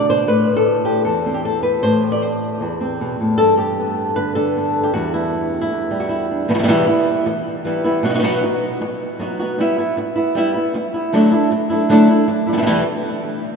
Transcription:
Already playing: D3 D4 F#4
0.09 B2 C5
0.27 A2 B4
0.56 A4
0.85 G4
1.05 E2 A4
1.26 C4
1.34 G4
1.45 A4
1.63 B4
1.83 A2 C5
2.03 G4
2.12 D5
2.22 C5
2.61 E2
2.81 C4
3.01 B2
3.20 A2
3.38 G2 A4
3.58 G4
3.80 B3
4.16 D3 B4
4.35 D3 A4
4.57 B3
4.83 G4
4.94 E2 G3 B3 E4 F#4
5.14 E4
5.33 B3
5.61 E4
5.71 E2
5.91 G3
6.00 F#4
6.09 E4
6.31 D4
6.48 E2 B2 E3 G3 B3 E4
6.54 B2 E3 G3 B3 E4
6.58 B2 E3 G3 B3 E4
6.63 B2 E3 G3 B3 E4
6.67 E2 B2 E3 G3 B3 E4
6.87 E3 G3 B3 E4
7.26 muted nylon-string guitar stroke
7.65 E3 G3 B3 E4
7.84 E3 G3 B3 E4
8.03 B2 F#3 B3 D#4 F#4
8.09 F#3 B3 D#4 F#4
8.14 F#3 B3 D#4 F#4
8.19 B2 F#3 B3 D#4 F#4
8.24 F#3 B3 D#4 F#4
8.42 B3 D#4 F#4
8.81 muted nylon-string guitar stroke
9.19 F#3 B3 D#4 F#4
9.39 B3 D#4 F#4
9.58 G3 B3 E4
9.78 B3 E4
9.97 muted nylon-string guitar stroke
10.16 B3 E4
10.35 G3 B3 E4
10.54 B3 E4
10.74 muted nylon-string guitar stroke
10.94 B3 E4
11.13 D3 F#3 A3 D4 E4
11.31 A3 D4 E4
11.51 muted nylon-string guitar stroke
11.70 A3 D4 E4
11.89 D3 F#3 A3 D4 E4
12.08 A3 D4 E4
12.28 muted nylon-string guitar stroke
12.47 A3 D4 E4
12.53 B2 E3 G3 B3 E4
12.57 B2 E3 G3 B3 E4
12.62 B2 E3 G3 B3 E4
12.66 E2 B2 E3 G3 B3 E4

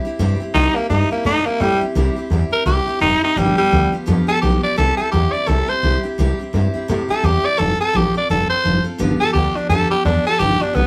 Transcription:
0.05 C4 E4 G4, muted upright bass stroke
0.19 G2 C3 G3 C4 E4 G4
0.40 C4 E4 G4, muted upright bass stroke
0.54 C2 C3 G3 C4 D#4 E4 G4
0.75 A#3 C4 E4 G4, muted upright bass stroke
0.90 G2 G3 C4 D#4 E4 G4
1.10 A#3 C4 E4 G4, muted upright bass stroke
1.25 A2 C3 G3 C4 D#4 E4 G4
1.46 A#3 C4 E4 G4, muted upright bass stroke
1.60 A2 G3 C4 E4 G4
1.81 C4 E4 G4, muted upright bass stroke
1.95 C2 C3 G3 C4 E4 G4
2.16 C4 E4 G4, muted upright bass stroke
2.30 E2 G3 C4 E4 G4
2.51 C4 E4 G4 A#4, muted upright bass stroke
2.65 C2 C3 G3 C4 E4 G4
2.87 C4 E4 G4, muted upright bass stroke
3.00 F1 G3 C4 D#4 E4 G4
3.21 C4 D#4 E4 G4, muted upright bass stroke
3.36 G1 G2 D3 F3 G3 B3 F4 G4
3.57 F3 G3 B3 F4 G4, muted upright bass stroke
3.71 D2 F3 B3 F4 G4
3.92 F3 B3 F4 G4, muted upright bass stroke
4.06 F2 G2 D3 F3 B3 F4 G4
4.27 F3 B3 F4 G4 A4, muted upright bass stroke
4.42 B1 F3 B3 F4 G4
4.63 F3 B3 F4 G4 D5, muted upright bass stroke
4.76 C2 C3 G3 C4 E4 G4 A4
4.97 C4 E4 G4 A4, muted upright bass stroke
5.12 E2 G3 C4 E4 G4
5.32 C4 E4 G4 D5, muted upright bass stroke
5.46 C2 C3 G3 C4 E4 G4 A4
5.67 C4 E4 G4 C5, muted upright bass stroke
5.82 C2 G3 C4 E4 G4
6.03 C4 E4 G4, muted upright bass stroke
6.18 C2 C3 G3 C4 E4 G4
6.39 C4 E4 G4, muted upright bass stroke
6.53 G2 G3 C4 E4 G4
6.74 C4 E4 G4, muted upright bass stroke
6.88 A2 C3 G3 C4 E4 G4
7.09 C4 E4 G4 A4, muted upright bass stroke
7.23 E2 G3 C4 E4 G4
7.43 C4 E4 G4 D5, muted upright bass stroke
7.57 F1 F3 C4 F4 A4
7.79 C4 F4 A4, muted upright bass stroke
7.93 A1 F3 C4 F4 G4 A4
8.14 C4 F4 A4 D5, muted upright bass stroke
8.29 F1 F3 C4 F4 A4
8.50 C4 F4 A4 C5, muted upright bass stroke
8.63 F1 F3 C4 F4 A4
8.84 C4 F4 A4, muted upright bass stroke
8.98 G1 G2 D3 F3 B3 F4 G4
9.20 F3 B3 F4 G4 A4, muted upright bass stroke
9.33 D2 F3 B3 F4 G4
9.56 F3 B3 D4 F4 G4, muted upright bass stroke
9.69 F2 G2 D3 F3 B3 F4 G4 A4
9.91 F3 B3 F4 G4, muted upright bass stroke
10.05 E2 F3 B3 D4 F4 G4
10.25 F3 B3 F4 G4 A4, muted upright bass stroke
10.39 G1 G2 D3 F3 B3 F4 G4
10.60 F3 B3 D4 F4 G4, muted upright bass stroke
10.74 B1 F3 B3 F4 G4

